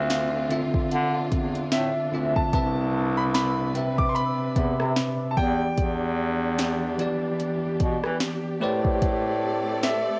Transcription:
Already playing: bass clarinet D2, tine electric piano D3 C4 F4 F5, string section D3 C4 D4 F4, grand piano F5
0.10 snare, closed hi-hat
0.49 tine electric piano D3 C4 F4 E5, closed hi-hat
0.74 kick
0.91 bass clarinet D3, closed hi-hat
1.32 bass clarinet E2, kick, closed hi-hat
1.55 closed hi-hat
1.72 bass clarinet A2, grand piano E5, snare, closed hi-hat
2.12 bass clarinet D2, tine electric piano D3 C4 F4 E5
2.36 grand piano A5, kick
2.52 bass clarinet C2, tine electric piano C3 C4 B4 E5, string section C3 B4, grand piano A5, kick, closed hi-hat
2.94 celesta B5
3.17 grand piano B5
3.22 celesta D6
3.34 grand piano B5, snare, closed hi-hat
3.44 celesta E6
3.74 tine electric piano C3 C4 B4 E5, celesta G5, closed hi-hat
3.98 grand piano D6, kick
4.04 celesta D6
4.09 grand piano C6
4.15 grand piano B5, closed hi-hat
4.26 celesta E6
4.55 bass clarinet E2, tine electric piano C3 C4 B4 E5, kick, closed hi-hat
4.80 bass clarinet C3, cross-stick
4.96 snare, closed hi-hat
5.31 grand piano A5
5.36 bass clarinet E2, tine electric piano E3 B3 G4 D5, string section E3 D4 G4, grand piano G5, kick
5.78 bass clarinet E2, kick, closed hi-hat
6.59 snare, closed hi-hat
6.98 tine electric piano E3 B3 G4 D5, closed hi-hat
7.40 closed hi-hat
7.80 bass clarinet B2, kick, closed hi-hat
8.04 bass clarinet E3, cross-stick
8.20 snare, closed hi-hat
8.61 bass clarinet A2, tine electric piano A3 G4 B4 C5 D5, string section A3 C4 A4 D5
8.85 kick
9.02 kick, closed hi-hat
9.43 celesta A5
9.83 grand piano E5, snare, closed hi-hat

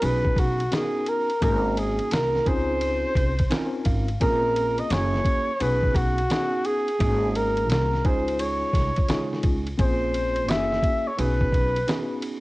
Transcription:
0.01 upright bass B1, tine electric piano B3 C#4 D#4 F#4 G#4, flugelhorn B4, ride
0.25 kick
0.36 upright bass B1, flugelhorn F#4, kick, ride
0.60 ride
0.71 tine electric piano B3 C#4 D#4 F#4 A#4, flugelhorn G#4, snare, hi-hat pedal, ride
1.06 flugelhorn A#4, ride
1.30 ride
1.41 upright bass G#1, tine electric piano A#3 C#4 D#4 F#4 G#4, flugelhorn A#4, kick, ride
1.77 flugelhorn G#4, ride
1.99 ride
2.11 upright bass C2, flugelhorn A#4, snare, hi-hat pedal, ride
2.35 snare
2.45 upright bass C#2, tine electric piano C4 C#4 D#4 F4 G#4, flugelhorn C5, kick, ride
2.81 ride
3.15 upright bass C2, kick, ride
3.39 kick, ride
3.50 tine electric piano C4 C#4 D#4 F4 A#4 G#5, snare, hi-hat pedal, ride
3.85 upright bass G#1, tine electric piano F5, kick, ride
4.08 ride
4.20 upright bass A#1, tine electric piano A#3 C4 C#4 F4 G#4, flugelhorn A#4, kick, ride
4.56 ride
4.78 flugelhorn D#5, ride
4.90 upright bass F#1, tine electric piano A#3 C#4 E4 F#4 G#4, flugelhorn C#5, snare, hi-hat pedal, ride
5.14 snare
5.25 kick, ride
5.60 upright bass B1, tine electric piano B3 C#4 D#4 F#4 G#4, flugelhorn B4, ride
5.83 kick
5.95 upright bass B1, flugelhorn F#4, kick, ride
6.18 ride
6.30 tine electric piano B3 C#4 D#4 F#4 G#4, snare, hi-hat pedal, ride
6.65 flugelhorn G#4, ride
6.88 ride
6.99 upright bass G#1, tine electric piano A#3 C4 D#4 F#4 G#4, kick, ride
7.06 tine electric piano C#4
7.35 flugelhorn A#4, ride
7.57 ride
7.69 upright bass C2, flugelhorn A#4, snare, hi-hat pedal, ride
7.93 snare
8.04 upright bass C#2, tine electric piano G#3 C#4 D#4 F4 G#4, flugelhorn C5, kick, ride
8.28 ride
8.39 flugelhorn C#5, ride
8.73 upright bass C2, kick, snare, ride
8.96 upright bass C#2, kick, ride
9.08 upright bass C#3, tine electric piano G#3 C#4 D#4 F4 G#4, snare, hi-hat pedal, ride
9.33 snare
9.43 upright bass C#2, kick, ride
9.67 ride
9.78 upright bass A#1, tine electric piano A#3 C4 C#4 F4 G#4, flugelhorn C5, kick, ride
10.14 ride
10.36 ride
10.48 upright bass F#1, tine electric piano A#3 C#4 E4 F#4 G4, flugelhorn E5, snare, hi-hat pedal, ride
10.56 tine electric piano G#4
10.72 snare
10.83 kick, ride
11.07 flugelhorn C#5
11.17 upright bass B1, tine electric piano B3 C#4 D#4 F#4 G#4, flugelhorn B4, ride
11.41 kick
11.53 upright bass B1, kick, ride
11.76 ride
11.87 tine electric piano B3 C#4 D#4 F#4 G#4, snare, hi-hat pedal, ride
12.22 ride

